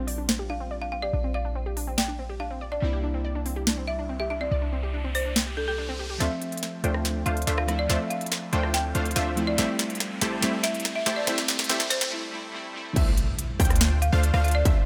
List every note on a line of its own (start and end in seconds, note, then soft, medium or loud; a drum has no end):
0.00 1.11 A#1 medium
0.00 2.79 G3 medium
0.00 2.79 C4 medium
0.00 2.80 D4 medium
0.00 2.81 F4 medium
0.07 0.17 D5 medium
0.07 open hi-hat medium
0.18 0.25 D4 medium
0.28 0.33 C4 medium
0.28 snare loud
0.39 0.49 G4 medium
0.50 0.60 D4 medium
0.50 0.63 F5 medium
0.60 0.70 C4 medium
0.71 0.81 D5 medium
0.81 0.88 D4 medium
0.81 0.88 F5 medium
0.92 0.96 C4 medium
0.92 0.99 F5 medium
1.02 1.13 G4 medium
1.02 1.16 D5 medium
1.13 2.80 A#1 medium
1.13 1.23 D4 medium
1.24 1.34 C4 medium
1.34 1.44 D5 medium
1.34 1.48 F5 medium
1.45 1.51 D4 medium
1.55 1.59 C4 medium
1.66 1.76 G4 medium
1.77 1.87 D4 medium
1.77 open hi-hat medium
1.87 1.97 C4 medium
1.98 2.08 D5 medium
1.98 2.11 G5 medium
1.98 snare loud
2.08 2.15 D4 medium
2.19 2.23 C4 medium
2.29 2.39 G4 medium
2.40 2.50 D4 medium
2.40 2.53 F5 medium
2.51 2.60 C4 medium
2.61 2.71 D5 medium
2.72 2.78 D4 medium
2.72 2.87 D5 medium
2.80 4.49 C2 medium
2.80 6.17 G3 medium
2.80 6.17 A#3 medium
2.80 2.86 C4 medium
2.80 6.18 D4 medium
2.80 riser medium
2.84 6.19 E4 medium
2.93 3.03 G4 medium
3.03 3.13 D4 medium
3.14 3.24 C4 medium
3.25 3.34 D5 medium
3.35 3.42 D4 medium
3.46 3.50 C4 medium
3.46 open hi-hat medium
3.56 3.66 G4 medium
3.67 3.77 D4 medium
3.67 snare loud
3.78 3.87 C4 medium
3.88 3.98 D5 medium
3.88 4.01 E5 medium
3.99 4.05 D4 medium
4.09 4.13 C4 medium
4.20 4.30 G4 medium
4.20 4.26 E5 medium
4.30 4.40 D4 medium
4.30 4.37 E5 medium
4.41 4.51 C4 medium
4.41 4.54 D5 medium
4.51 6.18 C2 medium
4.51 4.61 D5 medium
4.62 4.68 D4 medium
4.73 4.76 C4 medium
4.83 4.93 G4 medium
4.94 5.03 D4 medium
5.04 5.14 C4 medium
5.15 5.28 C5 medium
5.15 5.25 D5 medium
5.15 open hi-hat medium
5.25 5.32 D4 medium
5.36 5.40 C4 medium
5.36 snare loud
5.46 5.56 G4 medium
5.57 5.64 D4 medium
5.57 5.64 A4 medium
5.68 5.74 G4 loud
5.68 5.74 A4 medium
5.78 5.88 D4 medium
5.89 5.95 C4 loud
5.99 6.06 G4 medium
6.10 6.16 G4 medium
6.18 6.29 D2 medium
6.18 7.65 F3 medium
6.18 7.65 A3 medium
6.18 6.30 A3 medium
6.18 7.66 C4 medium
6.18 6.30 D4 medium
6.18 6.30 F4 medium
6.18 6.30 C5 medium
6.18 6.30 E5 loud
6.18 7.67 E5 medium
6.18 snare soft
6.18 closed hi-hat medium
6.18 riser medium
6.42 closed hi-hat medium
6.52 closed hi-hat soft
6.57 closed hi-hat medium
6.63 snare soft
6.63 closed hi-hat medium
6.84 7.24 D2 medium
6.84 7.24 A3 medium
6.84 7.23 D4 medium
6.84 7.23 F4 medium
6.84 7.24 C5 medium
6.84 7.24 G5 loud
6.84 closed hi-hat medium
6.94 cross-stick medium
7.05 snare medium
7.05 closed hi-hat medium
7.26 7.45 D2 loud
7.26 7.42 A3 medium
7.26 7.42 D4 medium
7.26 7.42 F4 medium
7.26 7.42 C5 medium
7.26 7.39 F5 medium
7.26 7.42 F5 medium
7.26 closed hi-hat medium
7.37 closed hi-hat soft
7.42 closed hi-hat medium
7.47 7.87 D2 medium
7.47 7.87 A3 medium
7.47 7.87 D4 medium
7.47 7.87 F4 medium
7.47 7.87 C5 medium
7.47 7.87 E5 medium
7.47 snare medium
7.47 closed hi-hat medium
7.58 7.64 F5 medium
7.58 cross-stick medium
7.67 7.86 F3 medium
7.67 7.87 A3 medium
7.67 7.87 C4 medium
7.67 7.87 E4 medium
7.67 7.75 F5 medium
7.67 cross-stick medium
7.67 closed hi-hat medium
7.79 7.92 D5 medium
7.87 7.97 D2 medium
7.87 9.34 F3 medium
7.87 9.34 A3 medium
7.87 8.00 A3 medium
7.87 9.35 C4 medium
7.87 8.00 D4 medium
7.87 8.00 F4 medium
7.87 8.00 C5 medium
7.87 8.00 E5 medium
7.87 snare medium
7.87 closed hi-hat medium
7.91 9.36 E5 medium
8.10 8.24 F5 medium
8.10 closed hi-hat medium
8.21 closed hi-hat soft
8.26 closed hi-hat medium
8.32 snare medium
8.32 closed hi-hat medium
8.53 8.93 D2 loud
8.53 8.92 A3 medium
8.53 8.92 D4 medium
8.53 8.92 F4 medium
8.53 8.92 C5 medium
8.53 8.92 G5 loud
8.53 closed hi-hat medium
8.63 cross-stick medium
8.74 8.87 G5 medium
8.74 snare medium
8.74 closed hi-hat medium
8.95 9.14 D2 loud
8.95 9.11 A3 medium
8.95 9.11 D4 medium
8.95 9.11 F4 medium
8.95 9.11 C5 medium
8.95 9.11 F5 medium
8.95 closed hi-hat medium
9.05 closed hi-hat medium
9.11 closed hi-hat medium
9.16 9.56 D2 loud
9.16 9.56 A3 medium
9.16 9.56 D4 medium
9.16 9.56 F4 medium
9.16 9.56 C5 medium
9.16 9.56 E5 medium
9.16 9.29 F5 medium
9.16 snare medium
9.16 closed hi-hat medium
9.36 9.55 F3 medium
9.36 9.56 A3 medium
9.36 9.56 C4 medium
9.36 9.56 E4 medium
9.36 closed hi-hat medium
9.47 9.62 D5 medium
9.56 9.66 A1 medium
9.56 10.40 G3 medium
9.56 10.41 A3 medium
9.56 9.69 A3 medium
9.56 10.41 C4 medium
9.56 9.69 E4 medium
9.56 10.42 E4 medium
9.56 9.69 G4 medium
9.56 9.69 C5 medium
9.56 9.69 E5 medium
9.56 snare medium
9.56 closed hi-hat medium
9.79 snare medium
9.79 closed hi-hat medium
9.90 closed hi-hat soft
9.95 closed hi-hat medium
10.00 snare medium
10.00 closed hi-hat medium
10.21 10.41 A1 medium
10.21 10.41 A3 medium
10.21 10.41 E4 medium
10.21 10.41 G4 medium
10.21 10.41 C5 medium
10.21 10.41 A5 medium
10.21 snare medium
10.21 closed hi-hat medium
10.41 10.51 A1 loud
10.41 11.24 G3 medium
10.41 11.25 A3 medium
10.41 10.53 A3 medium
10.41 11.26 C4 medium
10.41 10.53 E4 medium
10.41 11.27 E4 medium
10.41 10.53 G4 medium
10.41 10.53 C5 medium
10.41 10.53 E5 medium
10.41 snare medium
10.41 closed hi-hat medium
10.63 10.77 E5 medium
10.63 snare medium
10.63 closed hi-hat medium
10.74 closed hi-hat medium
10.80 closed hi-hat medium
10.85 snare medium
10.85 closed hi-hat medium
10.96 11.02 E5 medium
11.06 11.25 A1 medium
11.06 11.26 A3 medium
11.06 11.26 E4 medium
11.06 11.26 G4 medium
11.06 11.26 C5 medium
11.06 11.13 E5 medium
11.06 11.26 A5 loud
11.06 snare medium
11.06 closed hi-hat medium
11.16 11.30 D5 medium
11.25 11.35 A1 loud
11.25 11.66 G3 medium
11.25 11.68 A3 medium
11.25 11.37 A3 medium
11.25 11.68 C4 medium
11.25 11.37 E4 medium
11.25 11.69 E4 medium
11.25 11.37 G4 medium
11.25 11.37 C5 medium
11.25 11.37 E5 loud
11.25 snare medium
11.25 closed hi-hat medium
11.38 snare medium
11.48 snare medium
11.48 closed hi-hat medium
11.59 snare medium
11.59 closed hi-hat soft
11.64 12.08 G3 medium
11.64 closed hi-hat medium
11.69 11.78 A1 loud
11.69 12.10 A3 medium
11.69 11.80 A3 medium
11.69 12.10 C4 medium
11.69 11.80 E4 medium
11.69 12.11 E4 medium
11.69 11.80 G4 medium
11.69 11.80 C5 medium
11.69 11.80 E5 loud
11.69 snare loud
11.69 closed hi-hat medium
11.80 snare medium
11.90 12.04 C5 medium
11.90 snare loud
11.90 closed hi-hat medium
12.01 snare medium
12.10 12.30 G3 medium
12.10 12.31 A3 medium
12.10 12.32 C4 medium
12.10 12.32 E4 medium
12.31 12.51 G3 medium
12.31 12.52 A3 medium
12.31 12.53 C4 medium
12.35 12.53 E4 medium
12.52 12.72 G3 medium
12.52 12.73 A3 medium
12.52 12.74 C4 medium
12.56 12.75 E4 loud
12.73 12.94 G3 medium
12.73 12.94 A3 medium
12.73 12.95 C4 medium
12.77 12.96 E4 loud
12.96 13.04 D2 loud
12.96 13.07 A3 medium
12.96 13.07 D4 medium
12.96 13.07 F4 medium
12.96 13.07 C5 medium
12.96 13.07 E5 loud
12.96 kick loud
12.96 closed hi-hat medium
12.96 crash loud
12.96 impact medium
13.17 closed hi-hat medium
13.39 closed hi-hat medium
13.60 14.10 D2 medium
13.60 14.00 A3 medium
13.60 14.00 D4 medium
13.60 14.00 F4 medium
13.60 14.00 C5 medium
13.60 13.99 G5 loud
13.60 14.00 G5 loud
13.60 kick loud
13.60 open hi-hat loud
13.65 closed hi-hat medium
13.70 cross-stick medium
13.70 closed hi-hat medium
13.76 closed hi-hat medium
13.81 snare loud
13.81 closed hi-hat medium
14.02 14.15 F5 medium
14.02 closed hi-hat medium
14.12 14.32 D2 loud
14.12 14.31 A3 medium
14.12 14.31 D4 medium
14.12 14.31 F4 medium
14.12 14.31 C5 medium
14.12 14.31 F5 loud
14.23 closed hi-hat medium
14.34 14.63 D2 loud
14.34 14.63 A3 loud
14.34 14.63 D4 medium
14.34 14.63 F4 medium
14.34 14.63 C5 medium
14.34 14.63 F5 loud
14.34 14.41 F5 medium
14.34 cross-stick medium
14.44 14.51 F5 medium
14.44 closed hi-hat medium
14.48 closed hi-hat medium
14.51 14.68 D5 medium
14.51 closed hi-hat medium
14.65 14.73 D2 loud
14.65 14.76 A3 medium
14.65 14.76 D4 medium
14.65 14.76 F4 medium
14.65 14.76 C5 medium
14.65 14.76 E5 loud
14.65 kick loud
14.65 closed hi-hat medium